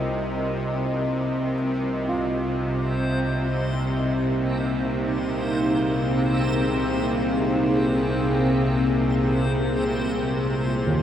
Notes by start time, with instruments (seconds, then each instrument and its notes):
Already playing: synth drone C2 C3, ambient pad C4 F4 A#4 D#5
1.50 synth texture C4 C5
1.54 ambient pad C3
2.08 grand piano F4
2.63 ambient pad A#3
3.59 ambient pad D#4
4.92 ambient pad G#4
5.66 ambient pad C5
8.91 ambient pad F4
10.87 grand piano D#2